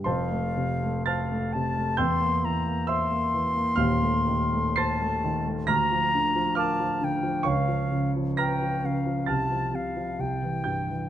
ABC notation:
X:1
M:4/4
L:1/16
Q:1/4=66
K:F
V:1 name="Flute"
f4 f2 a2 c'2 b2 c'4- | c'4 a4 b4 a2 g2 | f2 z2 g2 f2 a2 f2 g4 |]
V:2 name="Grand piano"
[cac']4 [af'a']4 [ge'g']4 [ec'e']4 | [fc'f']4 [c'a'c'']4 [bf'b']4 [fd'f']4 | [_df_d']4 [bf'b']4 [af'a']6 [gg']2 |]
V:3 name="Grand piano" clef=bass
[F,,,F,,] A, C, A, c A, C, A, E,, B, E, B, c B, E, B, | [_E,,,_E,,] A, _E, A, c A, E, A, D,, F, D, F, B F, D, F, | _D,, F, _D, F, _c F, D, F, =C,, F, C, F, C,, E, G,, E, |]